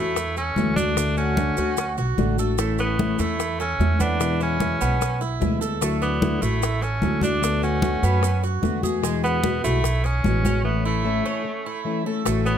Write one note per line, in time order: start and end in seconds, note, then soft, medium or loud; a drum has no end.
0.00 0.53 E2 medium
0.00 0.15 A3 soft
0.00 0.37 A3 medium
0.00 0.16 C#4 soft
0.00 0.36 E4 medium
0.00 0.16 F#4 soft
0.16 muted steel-string acoustic guitar stroke soft
0.16 high bongo medium
0.16 high conga soft
0.16 maracas medium
0.37 0.75 C#4 medium
0.37 0.76 A4 medium
0.37 high bongo soft
0.37 high conga soft
0.37 maracas soft
0.56 1.52 D2 medium
0.56 0.76 E3 medium
0.56 0.76 A3 medium
0.56 0.75 C#4 medium
0.56 0.75 F#4 medium
0.56 high bongo soft
0.56 low bongo medium
0.56 high conga medium
0.56 maracas soft
0.76 0.95 A3 soft
0.76 1.14 D4 loud
0.76 1.17 D4 medium
0.76 0.96 F#4 soft
0.76 high conga medium
0.76 maracas medium
0.96 1.36 D3 medium
0.96 1.36 A3 medium
0.96 1.37 D4 medium
0.96 1.37 F#4 medium
0.96 high bongo medium
0.96 high conga soft
0.96 maracas medium
1.17 1.94 C#4 medium
1.17 1.57 F#4 medium
1.17 high bongo soft
1.17 high conga soft
1.17 maracas soft
1.37 1.57 D3 medium
1.37 1.57 A3 medium
1.37 1.56 D4 medium
1.37 1.56 F#4 medium
1.37 high bongo medium
1.37 high conga medium
1.37 maracas soft
1.57 1.95 D2 medium
1.57 1.77 A3 soft
1.57 1.77 D4 soft
1.57 1.77 F#4 soft
1.57 1.97 F#4 medium
1.57 high bongo soft
1.57 maracas medium
1.77 muted steel-string acoustic guitar stroke medium
1.77 high bongo medium
1.77 high conga soft
1.77 maracas medium
1.98 2.17 B1 medium
1.98 2.37 F#4 medium
1.98 high bongo soft
1.98 high conga soft
1.98 maracas soft
2.17 3.13 A1 medium
2.17 2.37 D3 medium
2.17 2.38 A3 medium
2.17 2.38 D4 medium
2.17 2.37 F#4 medium
2.17 high bongo soft
2.17 low bongo medium
2.17 high conga medium
2.17 maracas soft
2.38 2.57 A3 soft
2.38 2.58 D4 soft
2.38 2.58 F#4 soft
2.38 2.59 A4 medium
2.38 maracas medium
2.58 2.97 E3 medium
2.58 2.98 A3 medium
2.58 2.78 A3 medium
2.58 2.98 C#4 medium
2.58 2.99 E4 medium
2.58 high bongo medium
2.58 high conga soft
2.58 maracas medium
2.78 3.22 B3 medium
2.78 3.18 C#4 medium
2.78 high bongo soft
2.78 high conga soft
2.78 maracas soft
2.98 3.18 E3 medium
2.98 3.18 A3 medium
2.98 3.18 C#4 medium
2.98 3.17 E4 medium
2.98 high bongo medium
2.98 high conga loud
2.98 maracas soft
3.18 3.76 E2 medium
3.18 3.38 A3 soft
3.18 3.60 A3 medium
3.18 3.38 C#4 soft
3.18 3.38 E4 soft
3.18 3.59 E4 medium
3.18 high bongo soft
3.18 high conga soft
3.18 maracas medium
3.39 muted steel-string acoustic guitar stroke medium
3.39 high bongo medium
3.39 high conga soft
3.39 maracas medium
3.60 4.03 C#4 loud
3.60 3.99 A4 medium
3.60 high bongo soft
3.60 high conga soft
3.60 maracas soft
3.79 4.74 E2 medium
3.79 3.99 E3 medium
3.79 3.99 A3 medium
3.79 3.99 C#4 medium
3.79 3.98 E4 medium
3.79 high bongo soft
3.79 low bongo medium
3.79 high conga medium
3.79 maracas soft
3.99 4.20 A3 soft
3.99 4.39 B3 medium
3.99 4.19 C#4 soft
3.99 4.41 D4 loud
3.99 4.19 E4 soft
3.99 high conga medium
3.99 maracas medium
4.19 4.58 B2 medium
4.19 4.59 E3 medium
4.19 4.59 G#3 medium
4.19 4.60 B3 medium
4.19 4.60 E4 medium
4.19 high bongo medium
4.19 high conga soft
4.19 maracas medium
4.40 5.18 C#4 medium
4.40 4.80 E4 medium
4.40 high bongo soft
4.40 high conga soft
4.40 maracas soft
4.60 4.79 B2 medium
4.60 4.80 E3 medium
4.60 4.80 G#3 medium
4.60 4.79 B3 medium
4.60 4.79 E4 medium
4.60 high bongo medium
4.60 high conga medium
4.60 maracas soft
4.80 5.37 B1 medium
4.80 5.00 G#3 soft
4.80 5.00 B3 soft
4.80 5.20 B3 medium
4.80 5.00 E4 soft
4.80 high bongo soft
4.80 maracas medium
5.00 muted steel-string acoustic guitar stroke soft
5.00 high bongo medium
5.00 high conga soft
5.00 maracas medium
5.21 5.60 E4 medium
5.21 high bongo soft
5.21 high conga soft
5.21 maracas soft
5.40 6.36 D2 medium
5.40 5.60 B2 medium
5.40 5.60 E3 medium
5.40 5.60 G#3 medium
5.40 5.60 B3 medium
5.40 5.59 E4 medium
5.40 high bongo soft
5.40 low bongo medium
5.40 high conga medium
5.40 maracas soft
5.60 5.81 G#3 soft
5.60 5.80 B3 soft
5.60 5.80 E4 soft
5.60 5.81 A4 medium
5.60 maracas medium
5.81 6.20 D3 medium
5.81 6.20 F#3 medium
5.81 6.21 A3 medium
5.81 6.01 A3 medium
5.81 6.21 E4 medium
5.81 6.21 F#4 medium
5.81 high bongo medium
5.81 high conga soft
5.81 maracas medium
6.02 6.44 B3 medium
6.02 6.41 D4 medium
6.02 high bongo soft
6.02 high conga soft
6.02 maracas soft
6.22 6.41 D3 medium
6.22 6.41 F#3 medium
6.22 6.41 A3 medium
6.22 6.41 E4 medium
6.22 6.40 F#4 medium
6.22 high bongo medium
6.22 high conga medium
6.22 maracas soft
6.41 6.98 A1 medium
6.41 6.84 A3 medium
6.41 6.61 A3 soft
6.41 6.81 E4 medium
6.41 6.61 E4 soft
6.41 6.61 F#4 soft
6.41 high bongo soft
6.41 high conga soft
6.41 maracas medium
6.62 muted steel-string acoustic guitar stroke medium
6.62 high bongo medium
6.62 high conga soft
6.62 maracas medium
6.81 7.23 C#4 medium
6.81 7.21 A4 medium
6.81 high bongo soft
6.81 high conga soft
6.81 maracas soft
7.01 7.97 D2 medium
7.01 7.21 D3 medium
7.01 7.21 F#3 medium
7.01 7.21 A3 medium
7.01 7.21 E4 medium
7.01 7.20 F#4 medium
7.01 high bongo soft
7.01 low bongo medium
7.01 high conga medium
7.01 maracas soft
7.21 7.41 A3 soft
7.21 7.62 D4 medium
7.21 7.60 D4 medium
7.21 7.42 E4 soft
7.21 7.41 F#4 soft
7.21 high conga medium
7.21 maracas medium
7.41 7.80 D3 medium
7.41 7.81 A3 medium
7.41 7.82 B3 medium
7.41 7.82 F#4 medium
7.41 high bongo medium
7.41 high conga soft
7.41 maracas medium
7.62 8.40 C#4 medium
7.62 8.02 F#4 medium
7.62 high bongo soft
7.62 high conga soft
7.62 maracas soft
7.82 8.02 D3 medium
7.82 8.02 A3 medium
7.82 8.01 B3 medium
7.82 8.00 F#4 medium
7.82 high bongo medium
7.82 high conga loud
7.82 maracas soft
8.02 8.59 F#2 medium
8.02 8.21 A3 soft
8.02 8.21 B3 soft
8.02 8.42 B3 medium
8.02 8.22 F#4 soft
8.02 high bongo soft
8.02 maracas medium
8.22 muted steel-string acoustic guitar stroke medium
8.22 high bongo medium
8.22 high conga soft
8.22 maracas medium
8.43 8.82 F#4 medium
8.43 high bongo soft
8.43 high conga soft
8.43 maracas soft
8.62 9.58 E2 medium
8.62 8.82 D3 medium
8.62 8.82 A3 medium
8.62 8.82 B3 medium
8.62 8.81 F#4 medium
8.62 high bongo soft
8.62 low bongo medium
8.62 high conga medium
8.62 maracas soft
8.82 9.02 A3 soft
8.82 9.02 B3 soft
8.82 9.02 F#4 soft
8.82 9.03 G#4 medium
8.82 high conga medium
8.82 maracas medium
9.02 9.42 B2 medium
9.02 9.42 E3 medium
9.02 9.43 G#3 medium
9.02 9.23 G#3 medium
9.02 9.43 B3 medium
9.02 9.43 F#4 medium
9.02 high bongo medium
9.02 high conga soft
9.02 maracas medium
9.23 9.63 B3 medium
9.23 9.61 B3 medium
9.23 high bongo soft
9.23 high conga soft
9.23 maracas soft
9.43 9.63 B2 medium
9.43 9.63 E3 medium
9.43 9.63 G#3 medium
9.43 9.63 B3 medium
9.43 9.61 F#4 medium
9.43 high bongo medium
9.43 high conga medium
9.43 maracas soft
9.63 10.21 B1 medium
9.63 9.82 G#3 soft
9.63 10.06 A3 medium
9.63 9.82 B3 soft
9.63 10.03 E4 medium
9.63 9.82 F#4 soft
9.63 high bongo soft
9.63 high conga soft
9.63 maracas medium
9.83 muted steel-string acoustic guitar stroke medium
9.83 high bongo medium
9.83 high conga soft
9.83 maracas medium
10.04 10.64 C#4 medium
10.04 10.43 G#4 medium
10.04 high bongo soft
10.04 high conga soft
10.04 maracas soft
10.23 11.19 A1 medium
10.23 10.43 B2 medium
10.23 10.43 E3 medium
10.23 10.43 G#3 medium
10.23 10.42 B3 medium
10.23 10.42 F#4 medium
10.23 high bongo soft
10.23 low bongo medium
10.23 high conga medium
10.23 maracas soft
10.43 10.64 G#3 soft
10.43 10.63 B3 soft
10.43 10.84 C#4 medium
10.43 10.63 F#4 soft
10.43 high conga medium
10.43 maracas medium
10.64 11.03 E3 medium
10.64 11.03 A3 medium
10.64 10.83 B3 medium
10.64 11.04 C#4 medium
10.64 11.04 E4 medium
10.85 12.02 A3 medium
10.85 11.24 E4 medium
11.04 11.24 E3 medium
11.04 11.24 A3 medium
11.04 11.24 C#4 medium
11.04 11.24 E4 medium
11.25 11.43 A3 soft
11.25 11.44 C#4 soft
11.25 11.64 C#4 medium
11.25 11.44 E4 soft
11.44 muted steel-string acoustic guitar stroke medium
11.66 12.05 E4 medium
11.85 12.04 E3 medium
11.85 12.05 A3 medium
11.85 12.05 C#4 medium
11.85 12.04 E4 medium
12.05 12.24 A3 soft
12.05 12.25 C#4 soft
12.05 12.25 E4 soft
12.05 12.25 A4 medium
12.25 12.58 A1 medium
12.25 12.58 E3 medium
12.25 12.58 A3 medium
12.25 12.45 A3 medium
12.25 12.58 C#4 medium
12.25 12.58 F#4 medium
12.25 high bongo medium
12.25 high conga soft
12.25 maracas medium
12.45 12.58 B3 medium
12.45 12.58 C#4 medium
12.45 high bongo soft
12.45 high conga soft
12.45 maracas soft